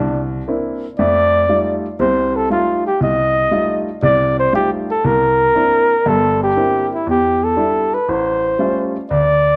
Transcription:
Already playing: grand piano C2, flugelhorn D4
0.48 grand piano A#3 C4 D4 E4
0.99 grand piano F2 A3, flugelhorn D5
1.49 grand piano G3 A3 D#4 F4
2.00 grand piano C2 C3, flugelhorn C5
2.36 flugelhorn A4
2.50 grand piano G3 A3 D#4 F4, flugelhorn F4
2.87 flugelhorn G4
3.00 grand piano C2, flugelhorn D#5
3.51 grand piano G3 A3 D#4 F4
4.02 grand piano C2 C3, flugelhorn D5
4.39 flugelhorn C5
4.53 grand piano G3 A3 D#4 F4, flugelhorn G4
4.91 flugelhorn A4
5.04 grand piano C2, flugelhorn A#4
5.55 grand piano A#3 C4 D4 E4
6.06 grand piano G1 G2, flugelhorn A4
6.44 flugelhorn G4
6.56 grand piano A#3 C4 D4 E4
6.94 flugelhorn E4
7.07 grand piano E2, flugelhorn G4
7.44 flugelhorn A4
7.57 grand piano G3 D4 E4
7.95 flugelhorn B4
8.09 grand piano A1, flugelhorn C5
8.59 grand piano G3 A3 C#4 F4
9.11 grand piano D2, flugelhorn D5

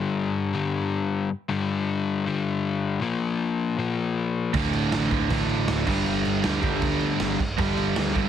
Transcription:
Already playing: overdriven electric guitar G2 D3 G3
0.53 overdriven electric guitar G2 D3 G3
1.49 overdriven electric guitar G2 D3 G3
2.25 overdriven electric guitar G2 D3 G3
3.00 overdriven electric guitar A#2 F3 A#3
3.77 overdriven electric guitar A#2 F3 A#3
4.53 picked electric bass D1, overdriven electric guitar D2 A2 D3, kick, crash
4.73 picked electric bass D1, crash
4.92 picked electric bass A1, snare, crash
5.11 picked electric bass D1, overdriven electric guitar D2 A2 D3, kick, crash
5.29 picked electric bass A1, overdriven electric guitar D2 A2 D3, kick, crash
5.48 picked electric bass A1, crash
5.68 picked electric bass D1, snare, crash
5.86 picked electric bass G1, overdriven electric guitar G2 D3 G3, kick, crash
6.06 picked electric bass G1, crash
6.25 picked electric bass G1, crash
6.42 picked electric bass D2, overdriven electric guitar G2 D3 G3, snare, crash
6.62 picked electric bass G1, overdriven electric guitar G2 D3 G3, kick, crash
6.82 picked electric bass D2, kick, crash
7.00 picked electric bass D2, crash
7.20 picked electric bass G1, snare, crash
7.39 picked electric bass G1, kick, crash
7.58 picked electric bass G1, overdriven electric guitar G2 D3 G3, kick, crash
7.77 picked electric bass G1, crash
7.96 picked electric bass D2, snare, crash
8.14 picked electric bass G1, overdriven electric guitar G2 D3 G3, kick, crash

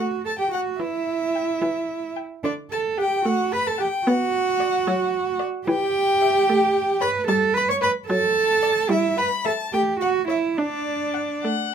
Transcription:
Already playing: viola A3, cello F#4
0.25 cello A4, violin A5
0.39 cello G4, violin G5
0.52 cello F#4, violin F#5
0.80 viola E3, cello E4, violin E5
1.35 violin G5
1.61 viola E3
2.17 violin G5
2.44 viola D3, cello D4, violin D5
2.71 cello A4, violin A5
2.98 cello G4, violin F#5 G5
3.25 viola A3, cello F#4, violin F#5
3.52 cello B4, violin B5
3.67 cello A4, violin A5
3.78 cello G4, violin F#5 G5
4.06 viola B3, cello F#4, violin F#5
4.60 violin D5
4.88 viola F#3
5.40 violin D5
5.68 viola E3, cello G4, violin G5
6.22 violin E5
6.50 viola A3
7.01 cello B4, violin C#5 B5
7.28 viola G3, cello A4, violin A5
7.54 cello B4, violin B5
7.69 cello C#5, violin C#6
7.82 cello B4, violin C#5 B5
8.08 viola F#3, cello A4, violin A5
8.63 violin D5
8.89 viola G3, cello E4, violin E5
9.18 cello B4, violin B5
9.44 cello A4, violin E5 A5
9.73 viola A3, cello G4, violin G5
10.00 cello F#4, violin F#5
10.28 cello E4, violin C#5 E5
10.58 cello D4, viola D4, violin D5
11.14 violin F#5
11.44 viola A3, violin F#5

